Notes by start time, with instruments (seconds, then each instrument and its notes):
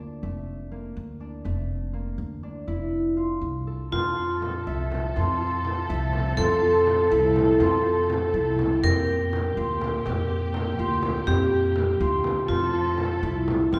Already playing: upright bass D2, harp A#3 F4
0.00 harp D4
0.23 upright bass F1, harp A3
0.71 harp A#3
0.97 upright bass D2
1.20 harp D4
1.44 upright bass F1, harp A3
1.93 harp A#3
2.18 upright bass D2
2.43 harp D4
2.67 upright bass F1, harp E4
3.17 harp F4
3.41 upright bass C2
3.67 harp A4
3.92 upright bass F2, string section F3 C4 A4, harp F4, vibraphone F4, frame drum
4.17 harp F4, frame drum
4.42 frame drum
4.67 upright bass C2, harp E5
4.92 frame drum
5.16 upright bass F2, harp F4, frame drum
5.40 harp F4, frame drum
5.65 frame drum
5.89 upright bass C2, harp E5
6.13 frame drum
6.37 upright bass F2, harp F4, vibraphone A4, frame drum
6.62 harp F4, frame drum
6.87 frame drum
7.10 upright bass C2, harp E4
7.36 frame drum
7.60 upright bass F2, harp F4, frame drum
7.85 harp F4
8.10 frame drum
8.34 upright bass C2, harp E4, frame drum
8.59 frame drum
8.83 upright bass F2, string section A#2 G4, harp G4, vibraphone A#4, frame drum
9.08 harp G4, frame drum
9.33 frame drum
9.57 upright bass D2, harp F4
9.81 frame drum
10.05 upright bass F2, harp G4, frame drum
10.30 harp G4, frame drum
10.54 frame drum
10.66 string section A#3
10.79 upright bass D2, harp F4
11.03 frame drum
11.27 upright bass F2, vibraphone G4, harp G4, frame drum
11.51 harp G4, frame drum
11.76 frame drum
12.00 upright bass D2, harp F4
12.24 frame drum
12.48 upright bass F2, string section F3 A3 A4, vibraphone F4, harp F4, frame drum
12.73 harp F4, frame drum
12.98 frame drum
13.23 upright bass C2, harp E4
13.48 frame drum
13.72 upright bass F2, harp C4, vibraphone F4, frame drum